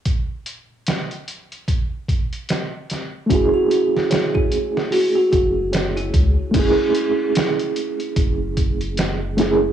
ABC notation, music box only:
X:1
M:4/4
L:1/16
Q:"Swing 16ths" 1/4=74
K:F#m
V:1 name="Music box"
z16 | F F F z c E3 F F F z c E3 | z16 |]